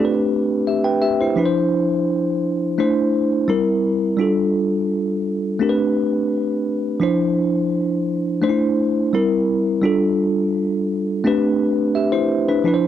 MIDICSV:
0, 0, Header, 1, 2, 480
1, 0, Start_track
1, 0, Tempo, 704225
1, 1903, Time_signature, 4, 2, 24, 8
1, 8776, End_track
2, 0, Start_track
2, 0, Title_t, "Tine electric piano"
2, 0, Program_c, 0, 4
2, 0, Note_on_c, 0, 57, 60
2, 0, Note_on_c, 0, 60, 58
2, 0, Note_on_c, 0, 62, 55
2, 0, Note_on_c, 0, 65, 40
2, 0, Note_on_c, 0, 67, 59
2, 0, Note_on_c, 0, 74, 50
2, 33, Note_on_c, 0, 71, 67
2, 88, Note_off_c, 0, 74, 0
2, 91, Note_off_c, 0, 65, 0
2, 127, Control_c, 0, 64, 127
2, 453, Note_off_c, 0, 67, 0
2, 459, Note_on_c, 0, 76, 53
2, 467, Note_on_c, 0, 67, 45
2, 479, Note_off_c, 0, 71, 0
2, 575, Note_off_c, 0, 76, 0
2, 575, Note_on_c, 0, 79, 54
2, 579, Note_off_c, 0, 67, 0
2, 581, Note_on_c, 0, 71, 51
2, 693, Note_off_c, 0, 79, 0
2, 693, Note_on_c, 0, 76, 64
2, 696, Note_off_c, 0, 71, 0
2, 696, Note_on_c, 0, 67, 54
2, 812, Note_off_c, 0, 76, 0
2, 813, Note_off_c, 0, 67, 0
2, 822, Note_on_c, 0, 72, 49
2, 829, Note_on_c, 0, 64, 44
2, 913, Note_off_c, 0, 57, 0
2, 916, Note_off_c, 0, 60, 0
2, 919, Note_off_c, 0, 62, 0
2, 925, Note_on_c, 0, 53, 58
2, 932, Note_off_c, 0, 64, 0
2, 933, Note_on_c, 0, 62, 56
2, 940, Note_on_c, 0, 64, 54
2, 948, Note_on_c, 0, 71, 54
2, 950, Control_c, 0, 64, 0
2, 983, Note_off_c, 0, 72, 0
2, 990, Note_off_c, 0, 71, 0
2, 991, Note_on_c, 0, 72, 71
2, 1083, Control_c, 0, 64, 127
2, 1875, Note_off_c, 0, 53, 0
2, 1879, Note_off_c, 0, 62, 0
2, 1883, Note_off_c, 0, 64, 0
2, 1895, Note_on_c, 0, 57, 58
2, 1899, Note_on_c, 0, 62, 60
2, 1901, Note_off_c, 0, 72, 0
2, 1907, Note_on_c, 0, 64, 54
2, 1909, Note_on_c, 0, 72, 67
2, 1911, Control_c, 0, 64, 0
2, 2013, Control_c, 0, 64, 127
2, 2371, Note_off_c, 0, 64, 0
2, 2371, Note_on_c, 0, 55, 63
2, 2372, Note_on_c, 0, 60, 51
2, 2379, Note_off_c, 0, 57, 0
2, 2379, Note_on_c, 0, 64, 56
2, 2381, Note_off_c, 0, 62, 0
2, 2384, Note_on_c, 0, 70, 66
2, 2386, Note_off_c, 0, 72, 0
2, 2392, Control_c, 0, 64, 0
2, 2521, Control_c, 0, 64, 127
2, 2835, Note_off_c, 0, 55, 0
2, 2843, Note_on_c, 0, 55, 62
2, 2853, Note_on_c, 0, 62, 51
2, 2858, Note_off_c, 0, 60, 0
2, 2860, Note_on_c, 0, 65, 51
2, 2861, Note_off_c, 0, 64, 0
2, 2864, Note_off_c, 0, 70, 0
2, 2871, Note_on_c, 0, 69, 64
2, 2872, Control_c, 0, 64, 0
2, 3005, Control_c, 0, 64, 127
2, 3794, Note_off_c, 0, 55, 0
2, 3799, Note_off_c, 0, 62, 0
2, 3803, Note_off_c, 0, 65, 0
2, 3808, Note_off_c, 0, 69, 0
2, 3812, Note_on_c, 0, 57, 59
2, 3818, Note_on_c, 0, 60, 57
2, 3823, Note_on_c, 0, 62, 54
2, 3828, Note_on_c, 0, 67, 55
2, 3833, Control_c, 0, 64, 0
2, 3835, Note_on_c, 0, 70, 53
2, 3874, Note_off_c, 0, 70, 0
2, 3881, Note_on_c, 0, 71, 72
2, 3944, Control_c, 0, 64, 127
2, 4759, Note_off_c, 0, 57, 0
2, 4762, Note_off_c, 0, 60, 0
2, 4764, Note_off_c, 0, 62, 0
2, 4767, Note_off_c, 0, 67, 0
2, 4770, Note_on_c, 0, 53, 62
2, 4778, Note_on_c, 0, 62, 55
2, 4785, Note_on_c, 0, 64, 54
2, 4793, Control_c, 0, 64, 0
2, 4793, Note_on_c, 0, 72, 65
2, 4794, Note_off_c, 0, 71, 0
2, 4915, Control_c, 0, 64, 127
2, 5718, Note_off_c, 0, 53, 0
2, 5722, Note_off_c, 0, 62, 0
2, 5725, Note_off_c, 0, 64, 0
2, 5730, Note_off_c, 0, 72, 0
2, 5737, Note_on_c, 0, 57, 61
2, 5744, Note_on_c, 0, 62, 58
2, 5745, Note_on_c, 0, 63, 45
2, 5750, Note_on_c, 0, 72, 68
2, 5753, Control_c, 0, 64, 0
2, 5789, Note_off_c, 0, 63, 0
2, 5790, Note_on_c, 0, 64, 56
2, 5889, Control_c, 0, 64, 127
2, 6220, Note_off_c, 0, 57, 0
2, 6223, Note_on_c, 0, 55, 60
2, 6224, Note_off_c, 0, 62, 0
2, 6224, Note_off_c, 0, 64, 0
2, 6227, Note_off_c, 0, 72, 0
2, 6231, Note_on_c, 0, 60, 59
2, 6233, Note_on_c, 0, 64, 61
2, 6234, Control_c, 0, 64, 0
2, 6235, Note_on_c, 0, 70, 66
2, 6346, Control_c, 0, 64, 127
2, 6684, Note_off_c, 0, 55, 0
2, 6692, Note_on_c, 0, 55, 58
2, 6700, Note_on_c, 0, 62, 57
2, 6706, Note_on_c, 0, 65, 53
2, 6707, Note_off_c, 0, 60, 0
2, 6708, Note_off_c, 0, 64, 0
2, 6710, Note_off_c, 0, 70, 0
2, 6713, Control_c, 0, 64, 0
2, 6717, Note_on_c, 0, 69, 65
2, 6844, Control_c, 0, 64, 127
2, 7638, Note_off_c, 0, 55, 0
2, 7642, Note_off_c, 0, 62, 0
2, 7645, Note_off_c, 0, 65, 0
2, 7651, Note_off_c, 0, 69, 0
2, 7662, Note_on_c, 0, 57, 70
2, 7666, Note_on_c, 0, 60, 64
2, 7671, Control_c, 0, 64, 0
2, 7672, Note_on_c, 0, 62, 68
2, 7680, Note_on_c, 0, 67, 64
2, 7684, Note_on_c, 0, 71, 79
2, 7806, Control_c, 0, 64, 127
2, 8138, Note_off_c, 0, 62, 0
2, 8141, Note_off_c, 0, 67, 0
2, 8144, Note_off_c, 0, 71, 0
2, 8146, Note_on_c, 0, 76, 63
2, 8152, Note_on_c, 0, 67, 53
2, 8258, Note_off_c, 0, 76, 0
2, 8261, Note_off_c, 0, 67, 0
2, 8262, Note_on_c, 0, 72, 70
2, 8266, Note_on_c, 0, 64, 58
2, 8490, Note_off_c, 0, 72, 0
2, 8492, Note_off_c, 0, 64, 0
2, 8510, Note_on_c, 0, 71, 64
2, 8514, Note_on_c, 0, 62, 54
2, 8602, Note_off_c, 0, 57, 0
2, 8604, Note_off_c, 0, 60, 0
2, 8615, Note_off_c, 0, 62, 0
2, 8616, Note_on_c, 0, 53, 65
2, 8623, Note_on_c, 0, 62, 62
2, 8630, Control_c, 0, 64, 0
2, 8631, Note_on_c, 0, 64, 59
2, 8632, Note_off_c, 0, 71, 0
2, 8640, Note_on_c, 0, 71, 60
2, 8675, Note_off_c, 0, 71, 0
2, 8683, Note_on_c, 0, 72, 72
2, 8754, Control_c, 0, 64, 127
2, 8776, Note_off_c, 0, 53, 0
2, 8776, Note_off_c, 0, 62, 0
2, 8776, Note_off_c, 0, 64, 0
2, 8776, Note_off_c, 0, 72, 0
2, 8776, End_track
0, 0, End_of_file